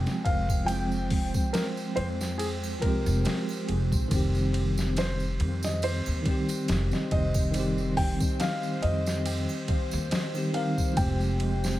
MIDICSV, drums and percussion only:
0, 0, Header, 1, 2, 480
1, 0, Start_track
1, 0, Key_signature, -4, "minor"
1, 0, Tempo, 857143
1, 385, Time_signature, 4, 2, 24, 8
1, 6606, End_track
2, 0, Start_track
2, 0, Title_t, "Drums"
2, 36, Note_on_c, 9, 54, 34
2, 39, Note_on_c, 9, 38, 43
2, 92, Note_off_c, 9, 54, 0
2, 95, Note_off_c, 9, 38, 0
2, 142, Note_on_c, 9, 36, 84
2, 143, Note_on_c, 9, 51, 61
2, 198, Note_off_c, 9, 36, 0
2, 199, Note_off_c, 9, 51, 0
2, 274, Note_on_c, 9, 36, 84
2, 278, Note_on_c, 9, 54, 66
2, 278, Note_on_c, 9, 81, 72
2, 330, Note_off_c, 9, 36, 0
2, 334, Note_off_c, 9, 54, 0
2, 334, Note_off_c, 9, 81, 0
2, 381, Note_on_c, 9, 51, 78
2, 384, Note_on_c, 9, 54, 64
2, 437, Note_off_c, 9, 51, 0
2, 440, Note_off_c, 9, 54, 0
2, 513, Note_on_c, 9, 54, 41
2, 569, Note_off_c, 9, 54, 0
2, 619, Note_on_c, 9, 46, 77
2, 621, Note_on_c, 9, 36, 92
2, 675, Note_off_c, 9, 46, 0
2, 677, Note_off_c, 9, 36, 0
2, 752, Note_on_c, 9, 54, 71
2, 754, Note_on_c, 9, 36, 88
2, 808, Note_off_c, 9, 54, 0
2, 810, Note_off_c, 9, 36, 0
2, 861, Note_on_c, 9, 51, 73
2, 864, Note_on_c, 9, 54, 66
2, 866, Note_on_c, 9, 38, 99
2, 917, Note_off_c, 9, 51, 0
2, 920, Note_off_c, 9, 54, 0
2, 922, Note_off_c, 9, 38, 0
2, 992, Note_on_c, 9, 54, 39
2, 1048, Note_off_c, 9, 54, 0
2, 1101, Note_on_c, 9, 51, 66
2, 1157, Note_off_c, 9, 51, 0
2, 1236, Note_on_c, 9, 54, 68
2, 1239, Note_on_c, 9, 38, 34
2, 1292, Note_off_c, 9, 54, 0
2, 1295, Note_off_c, 9, 38, 0
2, 1341, Note_on_c, 9, 51, 84
2, 1341, Note_on_c, 9, 54, 60
2, 1397, Note_off_c, 9, 51, 0
2, 1397, Note_off_c, 9, 54, 0
2, 1476, Note_on_c, 9, 81, 81
2, 1477, Note_on_c, 9, 54, 43
2, 1532, Note_off_c, 9, 81, 0
2, 1533, Note_off_c, 9, 54, 0
2, 1581, Note_on_c, 9, 51, 63
2, 1582, Note_on_c, 9, 36, 88
2, 1637, Note_off_c, 9, 51, 0
2, 1638, Note_off_c, 9, 36, 0
2, 1715, Note_on_c, 9, 54, 72
2, 1771, Note_off_c, 9, 54, 0
2, 1819, Note_on_c, 9, 54, 52
2, 1823, Note_on_c, 9, 51, 80
2, 1828, Note_on_c, 9, 38, 98
2, 1875, Note_off_c, 9, 54, 0
2, 1879, Note_off_c, 9, 51, 0
2, 1884, Note_off_c, 9, 38, 0
2, 1954, Note_on_c, 9, 81, 54
2, 1962, Note_on_c, 9, 54, 38
2, 2010, Note_off_c, 9, 81, 0
2, 2018, Note_off_c, 9, 54, 0
2, 2064, Note_on_c, 9, 51, 64
2, 2120, Note_off_c, 9, 51, 0
2, 2195, Note_on_c, 9, 36, 89
2, 2197, Note_on_c, 9, 54, 67
2, 2251, Note_off_c, 9, 36, 0
2, 2253, Note_off_c, 9, 54, 0
2, 2301, Note_on_c, 9, 54, 68
2, 2302, Note_on_c, 9, 51, 84
2, 2303, Note_on_c, 9, 36, 104
2, 2357, Note_off_c, 9, 54, 0
2, 2358, Note_off_c, 9, 51, 0
2, 2359, Note_off_c, 9, 36, 0
2, 2434, Note_on_c, 9, 54, 40
2, 2490, Note_off_c, 9, 54, 0
2, 2543, Note_on_c, 9, 51, 63
2, 2599, Note_off_c, 9, 51, 0
2, 2674, Note_on_c, 9, 54, 78
2, 2682, Note_on_c, 9, 38, 38
2, 2730, Note_off_c, 9, 54, 0
2, 2738, Note_off_c, 9, 38, 0
2, 2780, Note_on_c, 9, 54, 68
2, 2783, Note_on_c, 9, 51, 75
2, 2788, Note_on_c, 9, 38, 102
2, 2836, Note_off_c, 9, 54, 0
2, 2839, Note_off_c, 9, 51, 0
2, 2844, Note_off_c, 9, 38, 0
2, 2912, Note_on_c, 9, 54, 37
2, 2968, Note_off_c, 9, 54, 0
2, 3023, Note_on_c, 9, 51, 68
2, 3079, Note_off_c, 9, 51, 0
2, 3150, Note_on_c, 9, 54, 79
2, 3161, Note_on_c, 9, 38, 46
2, 3206, Note_off_c, 9, 54, 0
2, 3217, Note_off_c, 9, 38, 0
2, 3259, Note_on_c, 9, 54, 64
2, 3264, Note_on_c, 9, 51, 86
2, 3315, Note_off_c, 9, 54, 0
2, 3320, Note_off_c, 9, 51, 0
2, 3393, Note_on_c, 9, 54, 41
2, 3394, Note_on_c, 9, 81, 81
2, 3449, Note_off_c, 9, 54, 0
2, 3450, Note_off_c, 9, 81, 0
2, 3503, Note_on_c, 9, 36, 85
2, 3503, Note_on_c, 9, 51, 63
2, 3559, Note_off_c, 9, 36, 0
2, 3559, Note_off_c, 9, 51, 0
2, 3633, Note_on_c, 9, 54, 71
2, 3636, Note_on_c, 9, 51, 39
2, 3689, Note_off_c, 9, 54, 0
2, 3692, Note_off_c, 9, 51, 0
2, 3741, Note_on_c, 9, 54, 62
2, 3743, Note_on_c, 9, 51, 80
2, 3749, Note_on_c, 9, 38, 109
2, 3797, Note_off_c, 9, 54, 0
2, 3799, Note_off_c, 9, 51, 0
2, 3805, Note_off_c, 9, 38, 0
2, 3872, Note_on_c, 9, 54, 36
2, 3882, Note_on_c, 9, 38, 42
2, 3928, Note_off_c, 9, 54, 0
2, 3938, Note_off_c, 9, 38, 0
2, 3983, Note_on_c, 9, 36, 85
2, 3983, Note_on_c, 9, 51, 62
2, 4039, Note_off_c, 9, 36, 0
2, 4039, Note_off_c, 9, 51, 0
2, 4112, Note_on_c, 9, 54, 68
2, 4113, Note_on_c, 9, 81, 75
2, 4115, Note_on_c, 9, 36, 86
2, 4168, Note_off_c, 9, 54, 0
2, 4169, Note_off_c, 9, 81, 0
2, 4171, Note_off_c, 9, 36, 0
2, 4220, Note_on_c, 9, 54, 66
2, 4222, Note_on_c, 9, 51, 81
2, 4276, Note_off_c, 9, 54, 0
2, 4278, Note_off_c, 9, 51, 0
2, 4357, Note_on_c, 9, 54, 40
2, 4413, Note_off_c, 9, 54, 0
2, 4463, Note_on_c, 9, 36, 92
2, 4463, Note_on_c, 9, 46, 77
2, 4519, Note_off_c, 9, 36, 0
2, 4519, Note_off_c, 9, 46, 0
2, 4594, Note_on_c, 9, 54, 74
2, 4596, Note_on_c, 9, 36, 85
2, 4650, Note_off_c, 9, 54, 0
2, 4652, Note_off_c, 9, 36, 0
2, 4702, Note_on_c, 9, 51, 79
2, 4704, Note_on_c, 9, 54, 66
2, 4708, Note_on_c, 9, 38, 95
2, 4758, Note_off_c, 9, 51, 0
2, 4760, Note_off_c, 9, 54, 0
2, 4764, Note_off_c, 9, 38, 0
2, 4833, Note_on_c, 9, 54, 38
2, 4889, Note_off_c, 9, 54, 0
2, 4942, Note_on_c, 9, 51, 66
2, 4998, Note_off_c, 9, 51, 0
2, 5076, Note_on_c, 9, 54, 70
2, 5081, Note_on_c, 9, 38, 38
2, 5132, Note_off_c, 9, 54, 0
2, 5137, Note_off_c, 9, 38, 0
2, 5183, Note_on_c, 9, 51, 83
2, 5189, Note_on_c, 9, 54, 64
2, 5239, Note_off_c, 9, 51, 0
2, 5245, Note_off_c, 9, 54, 0
2, 5315, Note_on_c, 9, 81, 65
2, 5318, Note_on_c, 9, 54, 40
2, 5371, Note_off_c, 9, 81, 0
2, 5374, Note_off_c, 9, 54, 0
2, 5422, Note_on_c, 9, 51, 63
2, 5423, Note_on_c, 9, 36, 88
2, 5478, Note_off_c, 9, 51, 0
2, 5479, Note_off_c, 9, 36, 0
2, 5552, Note_on_c, 9, 54, 70
2, 5608, Note_off_c, 9, 54, 0
2, 5663, Note_on_c, 9, 51, 77
2, 5664, Note_on_c, 9, 54, 57
2, 5669, Note_on_c, 9, 38, 112
2, 5719, Note_off_c, 9, 51, 0
2, 5720, Note_off_c, 9, 54, 0
2, 5725, Note_off_c, 9, 38, 0
2, 5795, Note_on_c, 9, 81, 49
2, 5797, Note_on_c, 9, 54, 34
2, 5851, Note_off_c, 9, 81, 0
2, 5853, Note_off_c, 9, 54, 0
2, 5903, Note_on_c, 9, 51, 62
2, 5959, Note_off_c, 9, 51, 0
2, 6035, Note_on_c, 9, 36, 86
2, 6037, Note_on_c, 9, 54, 68
2, 6091, Note_off_c, 9, 36, 0
2, 6093, Note_off_c, 9, 54, 0
2, 6142, Note_on_c, 9, 51, 83
2, 6143, Note_on_c, 9, 36, 102
2, 6143, Note_on_c, 9, 54, 63
2, 6198, Note_off_c, 9, 51, 0
2, 6199, Note_off_c, 9, 36, 0
2, 6199, Note_off_c, 9, 54, 0
2, 6275, Note_on_c, 9, 54, 35
2, 6331, Note_off_c, 9, 54, 0
2, 6383, Note_on_c, 9, 51, 65
2, 6439, Note_off_c, 9, 51, 0
2, 6517, Note_on_c, 9, 54, 77
2, 6522, Note_on_c, 9, 38, 38
2, 6573, Note_off_c, 9, 54, 0
2, 6578, Note_off_c, 9, 38, 0
2, 6606, End_track
0, 0, End_of_file